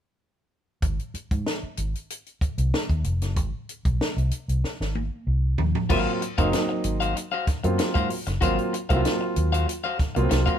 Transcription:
0.82 fingered electric bass G#1, kick, closed hi-hat
0.99 closed hi-hat
1.14 muted fingered electric bass stroke, closed hi-hat
1.31 fingered electric bass G#2, kick, closed hi-hat
1.46 snare
1.63 muted fingered electric bass stroke
1.77 fingered electric bass G#1, closed hi-hat
1.95 closed hi-hat
2.10 closed hi-hat
2.26 closed hi-hat
2.41 muted fingered electric bass stroke, kick, closed hi-hat
2.58 fingered electric bass C2, closed hi-hat
2.74 snare
2.90 fingered electric bass D#2, kick, closed hi-hat
3.04 fingered electric bass F1, closed hi-hat
3.22 fingered electric bass F#1, snare, closed hi-hat
3.36 fingered electric bass G#1, kick, closed hi-hat
3.69 closed hi-hat
3.85 fingered electric bass B1, kick, closed hi-hat
4.01 snare
4.17 fingered electric bass C2, closed hi-hat
4.31 closed hi-hat
4.48 fingered electric bass C2, closed hi-hat
4.64 muted fingered electric bass stroke, snare
4.80 fingered electric bass G#1, snare
4.95 high tom
5.27 fingered electric bass C2
5.58 fingered electric bass D#2, floor tom
5.75 floor tom
5.90 fingered electric bass G#1, upright piano F#3 A#3 C4 F4, clean electric guitar F#4 C5 F5, kick, crash
6.21 muted clean electric guitar stroke, closed hi-hat
6.38 fingered electric bass F#1, upright piano F#3 A#3 C4 D#4, clean electric guitar F#4 C5 F5, kick, closed hi-hat
6.52 muted clean electric guitar stroke, snare, closed hi-hat
6.69 muted clean electric guitar stroke
6.84 fingered electric bass G#1, closed hi-hat
7.00 clean electric guitar F#4 C5 F5, closed hi-hat
7.15 muted clean electric guitar stroke, closed hi-hat
7.32 clean electric guitar F#4 C5 F5
7.47 muted clean electric guitar stroke, muted fingered electric bass stroke, kick, snare, closed hi-hat
7.64 fingered electric bass F#2, upright piano F#3 A#3 C4 F4, muted clean electric guitar stroke, closed hi-hat
7.78 muted clean electric guitar stroke, snare, closed hi-hat
7.94 fingered electric bass G#2, clean electric guitar F#4 C5 F5, kick, closed hi-hat
8.10 muted clean electric guitar stroke, open hi-hat
8.27 fingered electric bass F#1, muted clean electric guitar stroke, snare, closed hi-hat
8.41 fingered electric bass G#1, upright piano F#3 A#3 C4 F4, clean electric guitar F#4 C5 F5, kick, closed hi-hat
8.59 closed hi-hat
8.73 muted clean electric guitar stroke, closed hi-hat
8.89 fingered electric bass C2, upright piano F#3 A#3 C4 E4, clean electric guitar F#4 C5 F5, kick, closed hi-hat
8.96 upright piano F4
9.04 muted clean electric guitar stroke, snare, closed hi-hat
9.21 muted clean electric guitar stroke
9.36 fingered electric bass D#2, closed hi-hat
9.52 clean electric guitar F#4 C5 F5, closed hi-hat
9.68 muted clean electric guitar stroke, closed hi-hat
9.84 clean electric guitar F#4 C5 F5
9.99 muted clean electric guitar stroke, muted fingered electric bass stroke, kick, snare, closed hi-hat
10.15 fingered electric bass C2, upright piano F#3 A#3 B3 F4, muted clean electric guitar stroke, closed hi-hat
10.23 upright piano C4
10.29 fingered electric bass C2, muted clean electric guitar stroke, snare, closed hi-hat
10.46 clean electric guitar F#4 C5 F5, kick, closed hi-hat

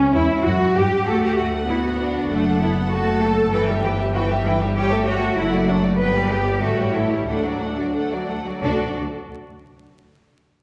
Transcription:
Already playing: double bass section C#2, cello section C#4, violin section C#4, viola section C#4
0.14 double bass section E2, violin section E4, cello section E4, viola section E4
0.45 double bass section F#2, cello section F#4, viola section F#4, violin section F#4
0.76 double bass section G2, violin section G4, cello section G4, viola section G4
1.07 double bass section D2, viola section A3, violin section F#4 F#5, cello section A4
1.23 cello section G4
1.39 cello section F#4
1.68 viola section B3, cello section E4, violin section F#4
2.00 cello section D4
2.30 double bass section F#1, viola section A3, violin section A4 F#5
2.61 viola section B3, cello section E4
2.90 viola section A3, cello section F#4, violin section A4 A5
3.22 cello section A4
3.53 double bass section G1, viola section E3, cello section A4, violin section B4 G5
3.68 viola section G3, violin section G4 E5
3.84 viola section E3, cello section G4, violin section B4 G5
3.99 viola section G3, violin section G4 E5
4.14 viola section E3, cello section F#4, violin section B4 G5
4.30 viola section G3, violin section G4 E5
4.45 viola section E3, cello section E4, violin section B4 G5
4.62 viola section G3, violin section G4 E5
4.75 viola section G3, cello section G4, violin section C#5 G5
4.92 viola section A3, violin section A4 E5
5.07 viola section G3, cello section F#4, violin section C#5 G5
5.22 viola section A3, violin section A4 E5
5.37 double bass section F#1, viola section F#3, cello section E4, violin section A4 F#5
5.53 viola section A3, violin section F#4 D5
5.68 viola section F#3, cello section D4, violin section A4 F#5
5.83 viola section A3, violin section F#4 D5
5.99 double bass section G1, viola section B3, cello section B4, violin section B4 G5
6.15 viola section G3, violin section G4 D5
6.31 viola section B3, cello section G4, violin section B4 G5
6.47 viola section G3, violin section G4 D5
6.63 double bass section A1, viola section A3, cello section F#4, violin section A4 E5
6.78 viola section G3, violin section G4 C#5
6.94 viola section A3, cello section E4, violin section A4 E5
7.10 viola section G3, violin section G4 C#5
7.28 double bass section D2, viola section A3, cello section D4, violin section A4 F#5
7.44 viola section F#3, violin section F#4 D5
7.61 viola section A3, violin section A4 F#5
7.77 viola section F#3, violin section F#4 D5
7.94 viola section A3, violin section A4 F#5
8.12 viola section F#3, violin section F#4 D5
8.29 viola section A3, violin section A4 F#5
8.46 viola section F#3, violin section F#4 D5
8.63 double bass section D2, cello section D4, viola section F#4, violin section A4 D5

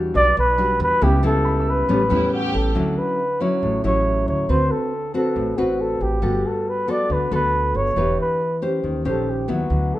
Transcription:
Already playing: upright bass E2, nylon-string guitar E3 G3 D4 F#4
0.14 upright bass B1, nylon-string guitar B2, flugelhorn D5
0.37 upright bass B1, flugelhorn B4
0.58 nylon-string guitar G3 D4 F#4
0.80 upright bass E2, flugelhorn B4
1.01 upright bass C#2, nylon-string guitar C#3 G3 B3 E4, flugelhorn G4
1.23 nylon-string guitar G3 B3 E4, flugelhorn A4
1.45 grand piano B5
1.60 grand piano E6
1.69 flugelhorn B4
1.89 upright bass A1, nylon-string guitar A2 G3 B3 C#4
2.10 upright bass E2, nylon-string guitar G3 B3 C#4, violin section E4
2.31 flugelhorn F#4, violin section G4
2.54 upright bass A1, flugelhorn A4
2.75 upright bass D2, nylon-string guitar D3 F#3 C#4 E4
2.98 flugelhorn B4
3.40 nylon-string guitar F#3 C#4 E4, flugelhorn C#5
3.63 upright bass A1, nylon-string guitar A2
3.84 upright bass A1, nylon-string guitar F#3 C#4 E4, flugelhorn C#5
4.28 upright bass D2, flugelhorn C#5
4.49 upright bass D2, nylon-string guitar D3 C4 F#4 B4, flugelhorn C5
4.71 flugelhorn A4
5.14 nylon-string guitar C4 F#4 B4, flugelhorn A4
5.36 upright bass A1, nylon-string guitar A2
5.57 upright bass A1, nylon-string guitar C4 F#4 B4, flugelhorn F#4
5.81 flugelhorn A4
6.01 upright bass A1, flugelhorn G4
6.22 upright bass G1, nylon-string guitar G3 B3 F#4 A4
6.46 flugelhorn A4
6.69 flugelhorn B4
6.88 nylon-string guitar B3 F#4 A4, flugelhorn D5
7.10 upright bass D2, nylon-string guitar D3, flugelhorn B4
7.31 upright bass D2, nylon-string guitar B3 F#4 A4, flugelhorn B4
7.75 upright bass G1, flugelhorn C#5
7.96 upright bass E1, nylon-string guitar E3 D4 G4 B4
8.21 flugelhorn B4
8.62 nylon-string guitar C#4 G4 C5
8.84 upright bass D#2, nylon-string guitar D#3
9.05 upright bass A#1, nylon-string guitar C#4 G4 C5, flugelhorn A4
9.30 flugelhorn G4
9.48 upright bass D#2, nylon-string guitar F#3 B3 E4, flugelhorn F#4
9.70 upright bass D2, nylon-string guitar D3
9.95 flugelhorn A4

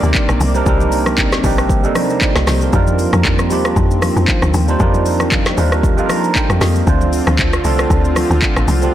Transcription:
Already playing: analog synth pad C3 A#3 C4 D5, tine electric piano G3 C4 D4 D#4 A#4
0.03 log drum bass D2, shaker
0.15 kick, clap, shaker
0.29 log drum bass A#1, cross-stick, shaker
0.40 log drum bass C2, open hi-hat, high conga, low conga, shaker
0.54 tine electric piano G3 C4 D4 D#4 A#4, shaker
0.66 log drum bass C2, tine electric piano G3 C4 D4 D#4 A#4, kick, low conga, shaker
0.80 high conga, shaker
0.92 open hi-hat, shaker
1.06 cross-stick, high conga, shaker
1.18 kick, clap, low conga, shaker
1.32 cross-stick, snare, shaker
1.43 log drum bass A#1, tine electric piano G3 C4 D4 D#4 G4, kick, open hi-hat, high conga, shaker
1.58 cross-stick, shaker
1.69 kick, low conga, shaker
1.83 tine electric piano G3 C4 D4 D#4 A4, shaker
1.95 cross-stick, open hi-hat, high conga, shaker
2.10 tine electric piano G4 D#5, shaker
2.21 tine electric piano F4 D5, kick, clap, shaker
2.36 log drum bass C2, cross-stick, snare, shaker
2.47 log drum bass C2, tine electric piano D#4 C5, cross-stick, snare, open hi-hat, high conga, low conga, shaker
2.61 tine electric piano D4 A#4, shaker
2.72 log drum bass F2, analog synth pad F3, tine electric piano G3 D4 D#4 F4 A#4, kick, low conga, shaker
2.87 high conga, shaker
2.99 open hi-hat, shaker
3.13 log drum bass F2, cross-stick, high conga, shaker
3.25 kick, clap, low conga, shaker
3.39 cross-stick, shaker
3.50 log drum bass D#2, tine electric piano G3 D4 D#4 F4 G4, open hi-hat, high conga, shaker
3.65 cross-stick, shaker
3.76 log drum bass F2, kick, low conga, shaker
3.91 shaker
4.02 cross-stick, open hi-hat, high conga, shaker
4.17 log drum bass F2, shaker
4.28 kick, clap, shaker
4.42 log drum bass D2, cross-stick, shaker
4.54 log drum bass D#2, open hi-hat, high conga, low conga, shaker
4.68 tine electric piano G3 D4 D#4 F4 C5, shaker
4.79 log drum bass F2, tine electric piano G3 D4 D#4 F4 A#4, kick, low conga, shaker
4.94 high conga, shaker
5.06 open hi-hat, shaker
5.20 cross-stick, high conga, shaker
5.32 kick, clap, low conga, shaker
5.46 cross-stick, snare, shaker
5.57 log drum bass D#2, tine electric piano G3 D4 D#4 F4 A#4, open hi-hat, high conga, shaker
5.72 cross-stick, shaker
5.83 kick, low conga, shaker
5.97 tine electric piano G3 D4 D#4 F4 A4, shaker
6.06 tine electric piano A#4, cross-stick, open hi-hat, high conga, shaker
6.10 tine electric piano A#5
6.24 shaker
6.35 tine electric piano G5, kick, clap, shaker
6.50 log drum bass F2, cross-stick, shaker
6.61 log drum bass F2, tine electric piano D#5, cross-stick, snare, open hi-hat, high conga, low conga, shaker
6.75 shaker
6.86 log drum bass D2, analog synth pad D3 C4 F4, tine electric piano A3 C4 D4 F4 C5, kick, low conga, shaker
7.01 high conga, shaker
7.13 open hi-hat, shaker
7.27 log drum bass D2, cross-stick, high conga, shaker
7.39 kick, clap, low conga, shaker
7.53 cross-stick, shaker
7.64 log drum bass C2, tine electric piano A3 C4 D4 F4 A4, open hi-hat, high conga, shaker
7.79 cross-stick, shaker
7.90 log drum bass D2, kick, low conga, shaker
8.05 shaker
8.16 cross-stick, open hi-hat, high conga, shaker
8.31 log drum bass D2, shaker
8.42 kick, clap, shaker
8.56 log drum bass A1, cross-stick, shaker
8.68 log drum bass C2, open hi-hat, high conga, low conga, shaker
8.82 tine electric piano A3 C4 D4 F4 G4, shaker

